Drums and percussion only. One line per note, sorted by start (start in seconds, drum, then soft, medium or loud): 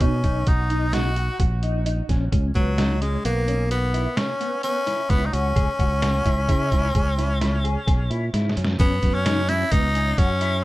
0.01 kick medium
0.01 closed hi-hat medium
0.24 kick medium
0.24 closed hi-hat soft
0.47 kick loud
0.47 closed hi-hat medium
0.70 closed hi-hat medium
0.93 snare medium
0.93 closed hi-hat medium
1.16 closed hi-hat soft
1.40 kick medium
1.40 closed hi-hat medium
1.63 closed hi-hat soft
1.86 closed hi-hat medium
2.09 kick medium
2.09 snare soft
2.09 closed hi-hat medium
2.32 kick medium
2.32 closed hi-hat medium
2.55 kick medium
2.55 closed hi-hat soft
2.78 snare loud
2.78 closed hi-hat medium
3.02 closed hi-hat medium
3.25 closed hi-hat medium
3.48 closed hi-hat soft
3.71 closed hi-hat medium
3.94 closed hi-hat medium
4.17 snare loud
4.17 closed hi-hat medium
4.41 closed hi-hat soft
4.63 closed hi-hat medium
4.87 snare soft
4.87 closed hi-hat medium
5.10 kick medium
5.10 closed hi-hat medium
5.33 closed hi-hat medium
5.56 kick medium
5.56 closed hi-hat medium
5.79 kick medium
5.79 closed hi-hat soft
6.02 snare medium
6.02 closed hi-hat medium
6.26 kick medium
6.26 closed hi-hat medium
6.49 kick medium
6.49 closed hi-hat medium
6.72 kick medium
6.72 snare soft
6.72 closed hi-hat medium
6.95 kick medium
6.95 closed hi-hat medium
7.19 snare soft
7.19 closed hi-hat medium
7.41 snare medium
7.41 closed hi-hat medium
7.65 closed hi-hat soft
7.88 kick medium
7.88 snare soft
7.88 closed hi-hat medium
8.11 closed hi-hat soft
8.34 snare soft
8.34 closed hi-hat medium
8.49 snare medium
8.57 closed hi-hat soft
8.65 snare medium
8.80 kick loud
8.80 closed hi-hat medium
9.03 kick medium
9.03 snare soft
9.03 closed hi-hat soft
9.26 snare medium
9.26 closed hi-hat medium
9.49 snare soft
9.49 closed hi-hat medium
9.72 kick medium
9.72 closed hi-hat medium
9.95 closed hi-hat medium
10.18 kick medium
10.18 closed hi-hat medium
10.41 closed hi-hat medium